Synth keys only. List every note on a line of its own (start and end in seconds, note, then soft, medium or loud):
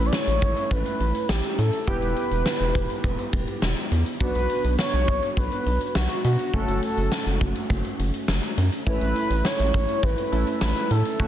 0.00 1.84 A3 medium
0.00 1.84 C#4 medium
0.00 1.84 E4 medium
1.88 4.17 B3 medium
1.88 4.17 E4 medium
1.88 4.17 G4 medium
4.21 6.50 B3 medium
4.21 6.50 D4 medium
4.21 6.50 F#4 medium
6.53 8.83 A3 medium
6.53 8.83 C#4 medium
6.53 8.83 F#4 medium
8.87 10.29 A3 medium
8.87 10.29 C#4 medium
8.87 10.29 E4 medium
10.32 11.19 A3 soft
10.32 11.19 C#4 soft
10.32 11.20 E4 medium
11.20 11.28 A3 medium
11.20 11.28 C#4 medium
11.20 11.28 F#4 medium